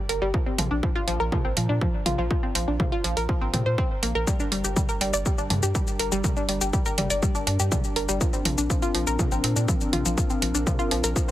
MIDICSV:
0, 0, Header, 1, 5, 480
1, 0, Start_track
1, 0, Tempo, 491803
1, 332, Time_signature, 4, 2, 24, 8
1, 11040, End_track
2, 0, Start_track
2, 0, Title_t, "Analog synth pad"
2, 0, Program_c, 0, 89
2, 4172, Note_on_c, 0, 55, 76
2, 4173, Note_on_c, 0, 62, 69
2, 4173, Note_on_c, 0, 70, 89
2, 7974, Note_off_c, 0, 55, 0
2, 8013, Note_on_c, 0, 60, 80
2, 11040, Note_off_c, 0, 60, 0
2, 11040, Note_off_c, 0, 62, 0
2, 11040, Note_off_c, 0, 70, 0
2, 11040, End_track
3, 0, Start_track
3, 0, Title_t, "Synth arpeggio sound"
3, 0, Program_c, 1, 84
3, 90, Note_on_c, 1, 70, 95
3, 187, Note_off_c, 1, 70, 0
3, 212, Note_on_c, 1, 55, 100
3, 269, Note_off_c, 1, 55, 0
3, 330, Note_on_c, 1, 53, 81
3, 447, Note_off_c, 1, 53, 0
3, 453, Note_on_c, 1, 60, 72
3, 546, Note_off_c, 1, 60, 0
3, 570, Note_on_c, 1, 53, 78
3, 629, Note_off_c, 1, 53, 0
3, 691, Note_on_c, 1, 62, 75
3, 786, Note_off_c, 1, 62, 0
3, 809, Note_on_c, 1, 53, 82
3, 868, Note_off_c, 1, 53, 0
3, 931, Note_on_c, 1, 65, 99
3, 1045, Note_off_c, 1, 65, 0
3, 1049, Note_on_c, 1, 53, 102
3, 1146, Note_off_c, 1, 53, 0
3, 1170, Note_on_c, 1, 70, 98
3, 1228, Note_off_c, 1, 70, 0
3, 1290, Note_on_c, 1, 53, 83
3, 1407, Note_off_c, 1, 53, 0
3, 1411, Note_on_c, 1, 60, 77
3, 1505, Note_off_c, 1, 60, 0
3, 1529, Note_on_c, 1, 53, 73
3, 1588, Note_off_c, 1, 53, 0
3, 1651, Note_on_c, 1, 62, 80
3, 1746, Note_off_c, 1, 62, 0
3, 1770, Note_on_c, 1, 53, 79
3, 1828, Note_off_c, 1, 53, 0
3, 2009, Note_on_c, 1, 65, 91
3, 2106, Note_off_c, 1, 65, 0
3, 2131, Note_on_c, 1, 53, 100
3, 2188, Note_off_c, 1, 53, 0
3, 2250, Note_on_c, 1, 53, 80
3, 2367, Note_off_c, 1, 53, 0
3, 2373, Note_on_c, 1, 60, 72
3, 2466, Note_off_c, 1, 60, 0
3, 2491, Note_on_c, 1, 53, 78
3, 2549, Note_off_c, 1, 53, 0
3, 2613, Note_on_c, 1, 62, 70
3, 2706, Note_off_c, 1, 62, 0
3, 2732, Note_on_c, 1, 53, 76
3, 2789, Note_off_c, 1, 53, 0
3, 2852, Note_on_c, 1, 65, 97
3, 2965, Note_off_c, 1, 65, 0
3, 2969, Note_on_c, 1, 53, 96
3, 3066, Note_off_c, 1, 53, 0
3, 3092, Note_on_c, 1, 70, 92
3, 3149, Note_off_c, 1, 70, 0
3, 3211, Note_on_c, 1, 53, 80
3, 3327, Note_off_c, 1, 53, 0
3, 3332, Note_on_c, 1, 60, 76
3, 3426, Note_off_c, 1, 60, 0
3, 3450, Note_on_c, 1, 60, 72
3, 3567, Note_off_c, 1, 60, 0
3, 3572, Note_on_c, 1, 72, 75
3, 3666, Note_off_c, 1, 72, 0
3, 3690, Note_on_c, 1, 60, 98
3, 3749, Note_off_c, 1, 60, 0
3, 3931, Note_on_c, 1, 58, 71
3, 3989, Note_off_c, 1, 58, 0
3, 4053, Note_on_c, 1, 70, 98
3, 4109, Note_off_c, 1, 70, 0
3, 4170, Note_on_c, 1, 55, 80
3, 4287, Note_off_c, 1, 55, 0
3, 4292, Note_on_c, 1, 62, 72
3, 4386, Note_off_c, 1, 62, 0
3, 4409, Note_on_c, 1, 55, 80
3, 4468, Note_off_c, 1, 55, 0
3, 4532, Note_on_c, 1, 67, 70
3, 4626, Note_off_c, 1, 67, 0
3, 4650, Note_on_c, 1, 55, 79
3, 4708, Note_off_c, 1, 55, 0
3, 4771, Note_on_c, 1, 70, 93
3, 4885, Note_off_c, 1, 70, 0
3, 4891, Note_on_c, 1, 55, 101
3, 4987, Note_off_c, 1, 55, 0
3, 5011, Note_on_c, 1, 74, 100
3, 5068, Note_off_c, 1, 74, 0
3, 5129, Note_on_c, 1, 55, 78
3, 5246, Note_off_c, 1, 55, 0
3, 5253, Note_on_c, 1, 62, 77
3, 5346, Note_off_c, 1, 62, 0
3, 5370, Note_on_c, 1, 62, 76
3, 5467, Note_off_c, 1, 62, 0
3, 5493, Note_on_c, 1, 67, 80
3, 5586, Note_off_c, 1, 67, 0
3, 5611, Note_on_c, 1, 55, 81
3, 5669, Note_off_c, 1, 55, 0
3, 5851, Note_on_c, 1, 70, 90
3, 5947, Note_off_c, 1, 70, 0
3, 5973, Note_on_c, 1, 55, 104
3, 6029, Note_off_c, 1, 55, 0
3, 6091, Note_on_c, 1, 55, 78
3, 6207, Note_off_c, 1, 55, 0
3, 6214, Note_on_c, 1, 62, 73
3, 6307, Note_off_c, 1, 62, 0
3, 6332, Note_on_c, 1, 55, 78
3, 6389, Note_off_c, 1, 55, 0
3, 6453, Note_on_c, 1, 67, 72
3, 6547, Note_off_c, 1, 67, 0
3, 6572, Note_on_c, 1, 55, 78
3, 6629, Note_off_c, 1, 55, 0
3, 6693, Note_on_c, 1, 70, 98
3, 6806, Note_off_c, 1, 70, 0
3, 6812, Note_on_c, 1, 55, 97
3, 6908, Note_off_c, 1, 55, 0
3, 6933, Note_on_c, 1, 74, 92
3, 6989, Note_off_c, 1, 74, 0
3, 7051, Note_on_c, 1, 55, 84
3, 7167, Note_off_c, 1, 55, 0
3, 7173, Note_on_c, 1, 62, 76
3, 7266, Note_off_c, 1, 62, 0
3, 7290, Note_on_c, 1, 62, 74
3, 7387, Note_off_c, 1, 62, 0
3, 7413, Note_on_c, 1, 67, 78
3, 7507, Note_off_c, 1, 67, 0
3, 7531, Note_on_c, 1, 55, 83
3, 7589, Note_off_c, 1, 55, 0
3, 7771, Note_on_c, 1, 70, 95
3, 7867, Note_off_c, 1, 70, 0
3, 7892, Note_on_c, 1, 55, 99
3, 7949, Note_off_c, 1, 55, 0
3, 8010, Note_on_c, 1, 53, 83
3, 8127, Note_off_c, 1, 53, 0
3, 8133, Note_on_c, 1, 60, 71
3, 8226, Note_off_c, 1, 60, 0
3, 8251, Note_on_c, 1, 53, 78
3, 8309, Note_off_c, 1, 53, 0
3, 8372, Note_on_c, 1, 62, 71
3, 8466, Note_off_c, 1, 62, 0
3, 8490, Note_on_c, 1, 53, 80
3, 8548, Note_off_c, 1, 53, 0
3, 8612, Note_on_c, 1, 65, 101
3, 8725, Note_off_c, 1, 65, 0
3, 8731, Note_on_c, 1, 53, 98
3, 8827, Note_off_c, 1, 53, 0
3, 8852, Note_on_c, 1, 70, 100
3, 8909, Note_off_c, 1, 70, 0
3, 8970, Note_on_c, 1, 53, 79
3, 9087, Note_off_c, 1, 53, 0
3, 9093, Note_on_c, 1, 60, 76
3, 9187, Note_off_c, 1, 60, 0
3, 9212, Note_on_c, 1, 60, 74
3, 9308, Note_off_c, 1, 60, 0
3, 9333, Note_on_c, 1, 62, 76
3, 9426, Note_off_c, 1, 62, 0
3, 9450, Note_on_c, 1, 53, 79
3, 9509, Note_off_c, 1, 53, 0
3, 9690, Note_on_c, 1, 65, 96
3, 9787, Note_off_c, 1, 65, 0
3, 9813, Note_on_c, 1, 53, 99
3, 9869, Note_off_c, 1, 53, 0
3, 9931, Note_on_c, 1, 53, 81
3, 10047, Note_off_c, 1, 53, 0
3, 10053, Note_on_c, 1, 60, 72
3, 10147, Note_off_c, 1, 60, 0
3, 10171, Note_on_c, 1, 53, 75
3, 10229, Note_off_c, 1, 53, 0
3, 10292, Note_on_c, 1, 62, 74
3, 10386, Note_off_c, 1, 62, 0
3, 10410, Note_on_c, 1, 53, 83
3, 10468, Note_off_c, 1, 53, 0
3, 10532, Note_on_c, 1, 65, 99
3, 10645, Note_off_c, 1, 65, 0
3, 10652, Note_on_c, 1, 53, 98
3, 10748, Note_off_c, 1, 53, 0
3, 10773, Note_on_c, 1, 70, 98
3, 10829, Note_off_c, 1, 70, 0
3, 10891, Note_on_c, 1, 53, 78
3, 11007, Note_off_c, 1, 53, 0
3, 11040, End_track
4, 0, Start_track
4, 0, Title_t, "Analog synth bass"
4, 0, Program_c, 2, 38
4, 92, Note_on_c, 2, 31, 87
4, 193, Note_off_c, 2, 31, 0
4, 213, Note_on_c, 2, 31, 80
4, 311, Note_off_c, 2, 31, 0
4, 571, Note_on_c, 2, 34, 91
4, 673, Note_off_c, 2, 34, 0
4, 692, Note_on_c, 2, 34, 81
4, 791, Note_off_c, 2, 34, 0
4, 1052, Note_on_c, 2, 34, 87
4, 1153, Note_off_c, 2, 34, 0
4, 1174, Note_on_c, 2, 34, 77
4, 1272, Note_off_c, 2, 34, 0
4, 1415, Note_on_c, 2, 34, 71
4, 1512, Note_off_c, 2, 34, 0
4, 1532, Note_on_c, 2, 46, 94
4, 1633, Note_off_c, 2, 46, 0
4, 1653, Note_on_c, 2, 46, 78
4, 1752, Note_off_c, 2, 46, 0
4, 2012, Note_on_c, 2, 34, 87
4, 2113, Note_off_c, 2, 34, 0
4, 2132, Note_on_c, 2, 34, 81
4, 2231, Note_off_c, 2, 34, 0
4, 2491, Note_on_c, 2, 34, 89
4, 2592, Note_off_c, 2, 34, 0
4, 2613, Note_on_c, 2, 34, 78
4, 2711, Note_off_c, 2, 34, 0
4, 2970, Note_on_c, 2, 34, 88
4, 3072, Note_off_c, 2, 34, 0
4, 3092, Note_on_c, 2, 34, 80
4, 3191, Note_off_c, 2, 34, 0
4, 3332, Note_on_c, 2, 34, 74
4, 3431, Note_off_c, 2, 34, 0
4, 3450, Note_on_c, 2, 46, 89
4, 3552, Note_off_c, 2, 46, 0
4, 3572, Note_on_c, 2, 46, 79
4, 3671, Note_off_c, 2, 46, 0
4, 3929, Note_on_c, 2, 34, 88
4, 4031, Note_off_c, 2, 34, 0
4, 4051, Note_on_c, 2, 34, 79
4, 4151, Note_off_c, 2, 34, 0
4, 4411, Note_on_c, 2, 31, 89
4, 4512, Note_off_c, 2, 31, 0
4, 4532, Note_on_c, 2, 31, 80
4, 4631, Note_off_c, 2, 31, 0
4, 4890, Note_on_c, 2, 31, 90
4, 4992, Note_off_c, 2, 31, 0
4, 5014, Note_on_c, 2, 31, 77
4, 5112, Note_off_c, 2, 31, 0
4, 5253, Note_on_c, 2, 31, 73
4, 5352, Note_off_c, 2, 31, 0
4, 5372, Note_on_c, 2, 43, 91
4, 5473, Note_off_c, 2, 43, 0
4, 5494, Note_on_c, 2, 43, 76
4, 5592, Note_off_c, 2, 43, 0
4, 5851, Note_on_c, 2, 31, 85
4, 5953, Note_off_c, 2, 31, 0
4, 5974, Note_on_c, 2, 31, 82
4, 6072, Note_off_c, 2, 31, 0
4, 6331, Note_on_c, 2, 31, 92
4, 6432, Note_off_c, 2, 31, 0
4, 6453, Note_on_c, 2, 31, 85
4, 6551, Note_off_c, 2, 31, 0
4, 6812, Note_on_c, 2, 31, 91
4, 6913, Note_off_c, 2, 31, 0
4, 6933, Note_on_c, 2, 31, 76
4, 7031, Note_off_c, 2, 31, 0
4, 7173, Note_on_c, 2, 31, 78
4, 7272, Note_off_c, 2, 31, 0
4, 7291, Note_on_c, 2, 43, 93
4, 7392, Note_off_c, 2, 43, 0
4, 7414, Note_on_c, 2, 43, 76
4, 7512, Note_off_c, 2, 43, 0
4, 7772, Note_on_c, 2, 31, 88
4, 7873, Note_off_c, 2, 31, 0
4, 7894, Note_on_c, 2, 31, 79
4, 7992, Note_off_c, 2, 31, 0
4, 8252, Note_on_c, 2, 34, 90
4, 8353, Note_off_c, 2, 34, 0
4, 8373, Note_on_c, 2, 34, 82
4, 8471, Note_off_c, 2, 34, 0
4, 8730, Note_on_c, 2, 34, 93
4, 8832, Note_off_c, 2, 34, 0
4, 8853, Note_on_c, 2, 34, 77
4, 8951, Note_off_c, 2, 34, 0
4, 9092, Note_on_c, 2, 34, 76
4, 9191, Note_off_c, 2, 34, 0
4, 9211, Note_on_c, 2, 46, 92
4, 9312, Note_off_c, 2, 46, 0
4, 9333, Note_on_c, 2, 46, 81
4, 9431, Note_off_c, 2, 46, 0
4, 9690, Note_on_c, 2, 34, 91
4, 9792, Note_off_c, 2, 34, 0
4, 9813, Note_on_c, 2, 34, 84
4, 9911, Note_off_c, 2, 34, 0
4, 10171, Note_on_c, 2, 34, 92
4, 10273, Note_off_c, 2, 34, 0
4, 10292, Note_on_c, 2, 34, 81
4, 10391, Note_off_c, 2, 34, 0
4, 10651, Note_on_c, 2, 34, 89
4, 10753, Note_off_c, 2, 34, 0
4, 10774, Note_on_c, 2, 34, 79
4, 10872, Note_off_c, 2, 34, 0
4, 11040, End_track
5, 0, Start_track
5, 0, Title_t, "Drums"
5, 91, Note_on_c, 9, 46, 89
5, 188, Note_off_c, 9, 46, 0
5, 331, Note_on_c, 9, 36, 103
5, 429, Note_off_c, 9, 36, 0
5, 571, Note_on_c, 9, 46, 94
5, 571, Note_on_c, 9, 47, 91
5, 668, Note_off_c, 9, 46, 0
5, 668, Note_off_c, 9, 47, 0
5, 811, Note_on_c, 9, 36, 102
5, 908, Note_off_c, 9, 36, 0
5, 1050, Note_on_c, 9, 46, 90
5, 1148, Note_off_c, 9, 46, 0
5, 1290, Note_on_c, 9, 47, 93
5, 1291, Note_on_c, 9, 36, 103
5, 1387, Note_off_c, 9, 47, 0
5, 1388, Note_off_c, 9, 36, 0
5, 1530, Note_on_c, 9, 46, 96
5, 1627, Note_off_c, 9, 46, 0
5, 1771, Note_on_c, 9, 36, 107
5, 1868, Note_off_c, 9, 36, 0
5, 2010, Note_on_c, 9, 46, 92
5, 2010, Note_on_c, 9, 47, 86
5, 2108, Note_off_c, 9, 46, 0
5, 2108, Note_off_c, 9, 47, 0
5, 2251, Note_on_c, 9, 36, 104
5, 2348, Note_off_c, 9, 36, 0
5, 2491, Note_on_c, 9, 46, 98
5, 2588, Note_off_c, 9, 46, 0
5, 2730, Note_on_c, 9, 47, 84
5, 2731, Note_on_c, 9, 36, 104
5, 2828, Note_off_c, 9, 36, 0
5, 2828, Note_off_c, 9, 47, 0
5, 2970, Note_on_c, 9, 46, 92
5, 3068, Note_off_c, 9, 46, 0
5, 3093, Note_on_c, 9, 46, 55
5, 3190, Note_off_c, 9, 46, 0
5, 3210, Note_on_c, 9, 36, 106
5, 3308, Note_off_c, 9, 36, 0
5, 3451, Note_on_c, 9, 46, 96
5, 3451, Note_on_c, 9, 47, 87
5, 3549, Note_off_c, 9, 46, 0
5, 3549, Note_off_c, 9, 47, 0
5, 3690, Note_on_c, 9, 36, 109
5, 3788, Note_off_c, 9, 36, 0
5, 3931, Note_on_c, 9, 46, 92
5, 4028, Note_off_c, 9, 46, 0
5, 4170, Note_on_c, 9, 36, 112
5, 4171, Note_on_c, 9, 82, 52
5, 4268, Note_off_c, 9, 36, 0
5, 4268, Note_off_c, 9, 82, 0
5, 4292, Note_on_c, 9, 82, 30
5, 4390, Note_off_c, 9, 82, 0
5, 4410, Note_on_c, 9, 46, 102
5, 4508, Note_off_c, 9, 46, 0
5, 4532, Note_on_c, 9, 82, 65
5, 4630, Note_off_c, 9, 82, 0
5, 4650, Note_on_c, 9, 47, 81
5, 4650, Note_on_c, 9, 82, 54
5, 4651, Note_on_c, 9, 36, 113
5, 4748, Note_off_c, 9, 36, 0
5, 4748, Note_off_c, 9, 47, 0
5, 4748, Note_off_c, 9, 82, 0
5, 4772, Note_on_c, 9, 82, 32
5, 4869, Note_off_c, 9, 82, 0
5, 4890, Note_on_c, 9, 46, 97
5, 4988, Note_off_c, 9, 46, 0
5, 5012, Note_on_c, 9, 82, 67
5, 5109, Note_off_c, 9, 82, 0
5, 5130, Note_on_c, 9, 82, 55
5, 5131, Note_on_c, 9, 36, 109
5, 5228, Note_off_c, 9, 82, 0
5, 5229, Note_off_c, 9, 36, 0
5, 5252, Note_on_c, 9, 82, 33
5, 5350, Note_off_c, 9, 82, 0
5, 5371, Note_on_c, 9, 46, 104
5, 5371, Note_on_c, 9, 47, 85
5, 5469, Note_off_c, 9, 46, 0
5, 5469, Note_off_c, 9, 47, 0
5, 5492, Note_on_c, 9, 82, 64
5, 5590, Note_off_c, 9, 82, 0
5, 5611, Note_on_c, 9, 36, 113
5, 5611, Note_on_c, 9, 82, 55
5, 5708, Note_off_c, 9, 82, 0
5, 5709, Note_off_c, 9, 36, 0
5, 5732, Note_on_c, 9, 82, 32
5, 5830, Note_off_c, 9, 82, 0
5, 5851, Note_on_c, 9, 46, 94
5, 5949, Note_off_c, 9, 46, 0
5, 5972, Note_on_c, 9, 82, 66
5, 6070, Note_off_c, 9, 82, 0
5, 6091, Note_on_c, 9, 36, 116
5, 6091, Note_on_c, 9, 47, 82
5, 6091, Note_on_c, 9, 82, 53
5, 6188, Note_off_c, 9, 47, 0
5, 6188, Note_off_c, 9, 82, 0
5, 6189, Note_off_c, 9, 36, 0
5, 6212, Note_on_c, 9, 82, 30
5, 6310, Note_off_c, 9, 82, 0
5, 6331, Note_on_c, 9, 46, 106
5, 6428, Note_off_c, 9, 46, 0
5, 6453, Note_on_c, 9, 82, 65
5, 6550, Note_off_c, 9, 82, 0
5, 6571, Note_on_c, 9, 82, 52
5, 6572, Note_on_c, 9, 36, 113
5, 6668, Note_off_c, 9, 82, 0
5, 6669, Note_off_c, 9, 36, 0
5, 6692, Note_on_c, 9, 82, 32
5, 6790, Note_off_c, 9, 82, 0
5, 6811, Note_on_c, 9, 46, 106
5, 6811, Note_on_c, 9, 47, 82
5, 6909, Note_off_c, 9, 46, 0
5, 6909, Note_off_c, 9, 47, 0
5, 6933, Note_on_c, 9, 46, 61
5, 6933, Note_on_c, 9, 82, 66
5, 7030, Note_off_c, 9, 46, 0
5, 7030, Note_off_c, 9, 82, 0
5, 7052, Note_on_c, 9, 36, 115
5, 7052, Note_on_c, 9, 82, 53
5, 7149, Note_off_c, 9, 82, 0
5, 7150, Note_off_c, 9, 36, 0
5, 7174, Note_on_c, 9, 82, 31
5, 7272, Note_off_c, 9, 82, 0
5, 7291, Note_on_c, 9, 46, 109
5, 7389, Note_off_c, 9, 46, 0
5, 7414, Note_on_c, 9, 82, 67
5, 7511, Note_off_c, 9, 82, 0
5, 7531, Note_on_c, 9, 47, 89
5, 7531, Note_on_c, 9, 82, 56
5, 7532, Note_on_c, 9, 36, 116
5, 7629, Note_off_c, 9, 47, 0
5, 7629, Note_off_c, 9, 82, 0
5, 7630, Note_off_c, 9, 36, 0
5, 7653, Note_on_c, 9, 82, 31
5, 7750, Note_off_c, 9, 82, 0
5, 7770, Note_on_c, 9, 46, 97
5, 7868, Note_off_c, 9, 46, 0
5, 7893, Note_on_c, 9, 82, 64
5, 7991, Note_off_c, 9, 82, 0
5, 8011, Note_on_c, 9, 82, 50
5, 8012, Note_on_c, 9, 36, 118
5, 8108, Note_off_c, 9, 82, 0
5, 8109, Note_off_c, 9, 36, 0
5, 8133, Note_on_c, 9, 82, 29
5, 8231, Note_off_c, 9, 82, 0
5, 8250, Note_on_c, 9, 46, 109
5, 8250, Note_on_c, 9, 47, 85
5, 8348, Note_off_c, 9, 46, 0
5, 8348, Note_off_c, 9, 47, 0
5, 8373, Note_on_c, 9, 82, 62
5, 8470, Note_off_c, 9, 82, 0
5, 8491, Note_on_c, 9, 82, 51
5, 8492, Note_on_c, 9, 36, 112
5, 8589, Note_off_c, 9, 36, 0
5, 8589, Note_off_c, 9, 82, 0
5, 8613, Note_on_c, 9, 82, 31
5, 8710, Note_off_c, 9, 82, 0
5, 8731, Note_on_c, 9, 46, 103
5, 8829, Note_off_c, 9, 46, 0
5, 8852, Note_on_c, 9, 82, 62
5, 8950, Note_off_c, 9, 82, 0
5, 8971, Note_on_c, 9, 47, 89
5, 8971, Note_on_c, 9, 82, 53
5, 8972, Note_on_c, 9, 36, 115
5, 9069, Note_off_c, 9, 36, 0
5, 9069, Note_off_c, 9, 47, 0
5, 9069, Note_off_c, 9, 82, 0
5, 9092, Note_on_c, 9, 82, 30
5, 9190, Note_off_c, 9, 82, 0
5, 9212, Note_on_c, 9, 46, 106
5, 9309, Note_off_c, 9, 46, 0
5, 9333, Note_on_c, 9, 82, 64
5, 9431, Note_off_c, 9, 82, 0
5, 9451, Note_on_c, 9, 36, 124
5, 9451, Note_on_c, 9, 82, 52
5, 9548, Note_off_c, 9, 82, 0
5, 9549, Note_off_c, 9, 36, 0
5, 9573, Note_on_c, 9, 82, 31
5, 9670, Note_off_c, 9, 82, 0
5, 9691, Note_on_c, 9, 46, 102
5, 9691, Note_on_c, 9, 47, 82
5, 9789, Note_off_c, 9, 46, 0
5, 9789, Note_off_c, 9, 47, 0
5, 9813, Note_on_c, 9, 82, 63
5, 9911, Note_off_c, 9, 82, 0
5, 9931, Note_on_c, 9, 36, 121
5, 9932, Note_on_c, 9, 82, 51
5, 10029, Note_off_c, 9, 36, 0
5, 10030, Note_off_c, 9, 82, 0
5, 10053, Note_on_c, 9, 82, 30
5, 10151, Note_off_c, 9, 82, 0
5, 10172, Note_on_c, 9, 46, 105
5, 10269, Note_off_c, 9, 46, 0
5, 10294, Note_on_c, 9, 82, 63
5, 10391, Note_off_c, 9, 82, 0
5, 10412, Note_on_c, 9, 36, 108
5, 10412, Note_on_c, 9, 47, 85
5, 10412, Note_on_c, 9, 82, 49
5, 10509, Note_off_c, 9, 36, 0
5, 10510, Note_off_c, 9, 47, 0
5, 10510, Note_off_c, 9, 82, 0
5, 10533, Note_on_c, 9, 82, 29
5, 10631, Note_off_c, 9, 82, 0
5, 10651, Note_on_c, 9, 46, 104
5, 10748, Note_off_c, 9, 46, 0
5, 10773, Note_on_c, 9, 46, 59
5, 10773, Note_on_c, 9, 82, 62
5, 10871, Note_off_c, 9, 46, 0
5, 10871, Note_off_c, 9, 82, 0
5, 10892, Note_on_c, 9, 36, 113
5, 10892, Note_on_c, 9, 82, 53
5, 10989, Note_off_c, 9, 36, 0
5, 10990, Note_off_c, 9, 82, 0
5, 11040, End_track
0, 0, End_of_file